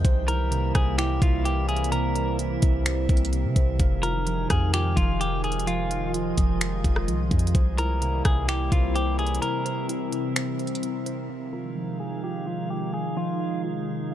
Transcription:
Already playing: ambient pad C3
0.04 808-style bass C2, ambient pad E3 G3 A#3 E4, synth texture C4 A#4 E5, synth keys C5, kick, closed hi-hat
0.28 synth keys E4, clean electric guitar A#4, closed hi-hat
0.51 synth keys C3, closed hi-hat
0.75 808-style bass C2, clean electric guitar G#4, synth keys C5, kick, cross-stick, closed hi-hat
0.98 synth keys E4, clean electric guitar G4, finger snap, closed hi-hat
1.22 808-style bass C2, synth keys C3, clean electric guitar F4, kick, closed hi-hat
1.45 clean electric guitar G4, synth keys C5, closed hi-hat
1.69 clean electric guitar G#4, closed hi-hat
1.76 closed hi-hat
1.84 closed hi-hat
1.92 synth keys C3, clean electric guitar A#4, closed hi-hat
2.15 synth keys C5, closed hi-hat
2.39 synth keys E4, closed hi-hat
2.62 808-style bass C2, synth keys C3, kick, closed hi-hat
2.86 synth keys C5, finger snap, closed hi-hat
3.09 808-style bass C2, kick, closed hi-hat
3.17 closed hi-hat
3.25 closed hi-hat
3.33 synth keys C3, closed hi-hat
3.44 808-style bass C3
3.56 808-style bass C2, synth keys C5, kick, closed hi-hat
3.79 808-style bass F1, ambient pad D#3 F3 G#3 D#4, synth texture D#4 G#4 F5, synth keys F5, kick, closed hi-hat
4.03 synth keys F4, clean electric guitar A#4, closed hi-hat
4.27 synth keys F3, closed hi-hat
4.50 808-style bass F2, clean electric guitar G#4, synth keys F5, kick, cross-stick, closed hi-hat
4.74 synth keys F4, clean electric guitar G4, finger snap, closed hi-hat
4.96 808-style bass F1, synth keys F3, clean electric guitar F4, kick, closed hi-hat
5.20 clean electric guitar G4, synth keys F5, closed hi-hat
5.44 clean electric guitar G#4, closed hi-hat
5.52 closed hi-hat
5.59 closed hi-hat
5.67 synth keys F3, ambient pad F4, clean electric guitar F4, synth texture D#5, closed hi-hat
5.90 synth keys F5, closed hi-hat
6.14 synth keys F4, closed hi-hat
6.37 808-style bass F1, synth keys F3, kick, closed hi-hat
6.61 synth keys F5, finger snap, closed hi-hat
6.84 808-style bass F1, kick, closed hi-hat
6.96 cross-stick
7.08 808-style bass C2, synth keys F3, closed hi-hat
7.31 808-style bass F2, synth keys F5, kick, closed hi-hat
7.39 closed hi-hat
7.47 closed hi-hat
7.55 808-style bass C2, ambient pad C3 E3 G3 A#3 E4, synth texture C4 A#4 E5, synth keys C5, kick, closed hi-hat
7.78 synth keys E4, clean electric guitar A#4, closed hi-hat
8.02 synth keys C3, closed hi-hat
8.25 808-style bass C2, clean electric guitar G#4, synth keys C5, kick, cross-stick, closed hi-hat
8.48 synth keys E4, clean electric guitar G4, finger snap, closed hi-hat
8.72 808-style bass C2, synth keys C3, clean electric guitar F4, kick, closed hi-hat
8.95 clean electric guitar G4, synth keys C5, closed hi-hat
9.19 clean electric guitar G#4, closed hi-hat
9.27 closed hi-hat
9.35 closed hi-hat
9.42 synth keys C3, ambient pad C4, clean electric guitar A#4, closed hi-hat
9.65 synth keys C5, closed hi-hat
9.89 synth keys E4, closed hi-hat
10.12 synth keys C3, closed hi-hat
10.36 synth keys C5, finger snap, closed hi-hat
10.59 closed hi-hat
10.67 closed hi-hat
10.75 closed hi-hat
10.83 synth keys C3, closed hi-hat
11.06 synth keys C5, closed hi-hat
11.29 ambient pad C3 D#3 F3 G#3 D#4, synth texture D#4 G#4 F5, synth keys F5
11.53 synth keys F4, clean electric guitar A#4
11.77 synth keys F3
12.00 clean electric guitar G#4, synth keys F5
12.23 synth keys F4, clean electric guitar G4
12.46 synth keys F3, clean electric guitar F4
12.70 clean electric guitar G4, synth keys F5
12.94 clean electric guitar G#4
13.16 synth keys F3, clean electric guitar F4
13.40 synth keys F5
13.64 synth keys F4
13.87 synth keys F3
14.11 synth keys F5

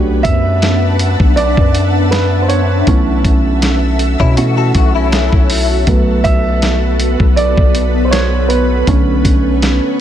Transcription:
Already playing: 808-style bass B1, grand piano A3 D4 F#4 G4, ambient pad B3 D4 B4 E5 F#5 A5
0.23 808-style bass F#2, grand piano E5, kick, closed hi-hat
0.62 snare, closed hi-hat
0.99 closed hi-hat
1.20 808-style bass B1, kick
1.36 grand piano D5, closed hi-hat
1.57 808-style bass F#2, kick
1.75 closed hi-hat
2.11 grand piano B4, snare, closed hi-hat
2.42 grand piano C5
2.48 grand piano C#5, closed hi-hat
2.87 808-style bass B1, grand piano E3 A3 C#4, ambient pad F#4 A4 E5, kick, closed hi-hat
3.25 808-style bass B1, kick, closed hi-hat
3.62 snare, closed hi-hat
3.99 closed hi-hat
4.20 808-style bass B2, clean electric guitar C#4 E4, kick
4.37 grand piano E3 A3 C#4, clean electric guitar F#4, closed hi-hat
4.57 clean electric guitar F#4 A4
4.75 808-style bass B1, clean electric guitar F#4, kick, closed hi-hat
4.95 clean electric guitar C#4 E4
5.12 snare, closed hi-hat
5.32 808-style bass B1, kick
5.50 open hi-hat
5.87 808-style bass B1, grand piano F#3 A3 B3, ambient pad B3 B4, kick, closed hi-hat
6.24 808-style bass B1, grand piano E5, kick, closed hi-hat
6.62 snare, closed hi-hat
7.00 closed hi-hat
7.20 808-style bass B1, kick
7.36 grand piano D5, closed hi-hat
7.57 808-style bass B1, kick
7.75 closed hi-hat
8.05 grand piano C5
8.11 grand piano C#5, snare, closed hi-hat
8.48 grand piano B4, closed hi-hat
8.87 808-style bass B1, grand piano D3 A3 C#4, ambient pad C#5, kick, closed hi-hat
9.25 808-style bass B1, kick, closed hi-hat
9.62 snare, closed hi-hat

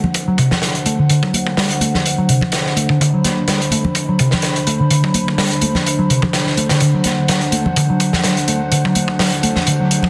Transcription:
Already playing: analog synth pad D3 D4 C5 F#5
0.04 low conga
0.14 kick, closed hi-hat
0.28 picked electric bass F#3
0.38 picked electric bass C3, kick, closed hi-hat
0.51 snare, low conga
0.62 snare, closed hi-hat
0.75 closed hi-hat
0.86 picked electric bass A3, closed hi-hat
0.99 picked electric bass D3
1.10 picked electric bass D3, closed hi-hat
1.23 picked electric bass F#3, kick
1.33 closed hi-hat, high conga
1.47 kick
1.57 picked electric bass G3, snare, open hi-hat
1.70 closed hi-hat
1.80 picked electric bass A3, closed hi-hat, high conga
1.95 snare, low conga
2.06 closed hi-hat
2.18 picked electric bass F#3
2.29 picked electric bass C3, closed hi-hat
2.41 kick, low conga
2.52 snare, closed hi-hat
2.66 snare
2.76 picked electric bass A3, closed hi-hat
2.89 picked electric bass D3, kick
3.00 picked electric bass D3, analog synth pad B5, kick, closed hi-hat
3.13 picked electric bass F#3
3.24 snare, closed hi-hat, high conga
3.48 picked electric bass G3, snare, closed hi-hat
3.62 closed hi-hat
3.71 picked electric bass A3, closed hi-hat, high conga
3.85 low conga
3.95 kick, closed hi-hat
4.09 picked electric bass F#3
4.19 picked electric bass C3, kick, closed hi-hat
4.31 snare, low conga
4.42 snare, closed hi-hat
4.56 closed hi-hat
4.67 picked electric bass A3, closed hi-hat
4.80 picked electric bass D3
4.91 picked electric bass D3, closed hi-hat
5.04 picked electric bass F#3, kick
5.14 closed hi-hat, high conga
5.28 kick
5.38 picked electric bass G3, snare, open hi-hat
5.51 closed hi-hat
5.61 picked electric bass A3, closed hi-hat, high conga
5.75 snare, low conga
5.86 closed hi-hat
5.99 picked electric bass F#3
6.10 picked electric bass C3, closed hi-hat
6.22 kick, low conga
6.33 snare, closed hi-hat
6.46 snare
6.57 picked electric bass A3, closed hi-hat
6.69 picked electric bass D3, snare, closed hi-hat
6.80 picked electric bass D3, analog synth pad F#5, kick, closed hi-hat, riser
6.94 picked electric bass F#3
7.04 snare, closed hi-hat, high conga
7.28 picked electric bass F#3, snare, closed hi-hat
7.41 closed hi-hat
7.52 picked electric bass A3, closed hi-hat, high conga
7.66 low conga
7.76 picked electric bass D3, kick, closed hi-hat
7.90 picked electric bass F#3
8.00 kick, closed hi-hat
8.13 snare, low conga
8.24 picked electric bass F#3, snare, closed hi-hat
8.37 closed hi-hat
8.48 picked electric bass A3, closed hi-hat
8.72 picked electric bass D3, closed hi-hat
8.85 picked electric bass F#3, kick
8.95 closed hi-hat, high conga
9.08 kick
9.19 picked electric bass F#3, snare, open hi-hat
9.32 closed hi-hat
9.43 picked electric bass A3, closed hi-hat, high conga
9.56 snare, low conga
9.67 picked electric bass D3, closed hi-hat
9.80 picked electric bass F#3
9.91 closed hi-hat
10.03 kick, low conga

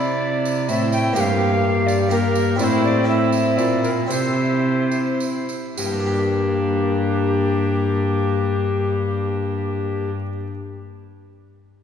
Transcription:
Already playing: harpsichord C3 C4 E4 G4, cello C3, trombone C4, viola E4, recorder D5
0.45 tambourine
0.68 harpsichord A2, cello A2, trombone C4, viola E4, recorder E5, tambourine
0.92 recorder G5, tambourine
1.13 harpsichord G2 A#3 D4 G4, cello G2, viola G4, recorder G5, tambourine
1.17 trombone A#3, recorder F5
1.87 recorder D5, tambourine
2.09 harpsichord A#3 D4 G4, trombone A#3, recorder A#4, tambourine
2.13 viola G4
2.35 tambourine
2.56 cello A2, harpsichord A2 C4 E4, trombone C4, tambourine
2.60 viola E4, recorder D5
2.64 recorder C5
2.84 recorder D5
3.04 harpsichord C4 E4
3.08 trombone C4, viola E4, recorder E5
3.33 tambourine
3.57 cello A#2, harpsichord A#2, recorder D5, tambourine
3.83 recorder A#4, tambourine
4.06 cello C3, harpsichord C3 C4 E4, trombone C4, viola E4, recorder C5
4.11 tambourine
4.91 tambourine
5.20 tambourine
5.49 tambourine
5.77 cello G2, harpsichord G2, trombone A#3, viola D4, recorder G4, tambourine
5.85 harpsichord G3
5.92 harpsichord A#3
5.99 harpsichord D4
6.06 harpsichord G4
6.13 harpsichord D5

